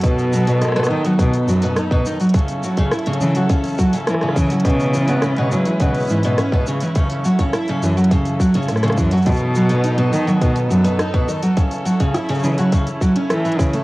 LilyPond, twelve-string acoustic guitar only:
\new Staff \with { instrumentName = "Twelve-string acoustic guitar" } { \clef bass \time 4/4 \key b \mixolydian \tempo 4 = 104 b,8 fis16 b,16 dis'16 b,16 dis16 fis16 b,8 fis16 b,16 dis'16 b,16 dis16 fis16 | cis8 fis16 cis16 e'16 cis16 e16 fis16 cis8 fis16 cis16 e'16 cis16 e16 fis16 | b,8 e16 b,16 cis'16 b,16 cis16 e16 b,8 e16 b,16 cis'16 b,16 cis16 e16 | cis8 fis16 cis16 e'16 cis16 e16 fis16 cis8 fis16 cis16 e'16 cis16 e16 fis16 |
b,8 fis16 b,16 dis'16 b,16 dis16 fis16 b,8 fis16 b,16 dis'16 b,16 dis16 fis16 | cis8 fis16 cis16 e'16 cis16 e16 fis16 cis16 r16 fis16 cis'16 a16 e16 e16 a16 | }